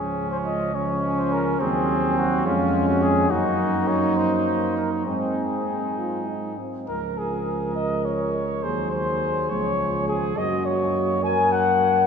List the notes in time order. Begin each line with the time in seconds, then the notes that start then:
Already playing: C#2 F3 C#4 G#4
0.31 C5
0.45 D#5
0.73 F3 C#4 C#5
1.19 C5
1.33 A#4
1.60 D#2 F#3 C4 G#4
2.18 F#4
2.45 F2 G#3 C#4 F4
2.88 F#4
3.02 G#4
3.29 F#2 A#3 D#4 F#4
3.88 C#5
4.16 C5
4.77 A#4
5.06 G#2 C4 D#4 G#4
5.97 F4
6.28 D#4
6.58 C4
6.88 C#2 F3 A#4
7.17 G#4
7.75 D#5
8.05 C#5
8.63 D#2 F#3 G#4 C5
8.91 C5
9.50 C#2 F3 C#5
10.08 G#4
10.37 F#2 A#3 F#4 D#5
10.66 C#5
11.23 A#4 G#5
11.52 F#5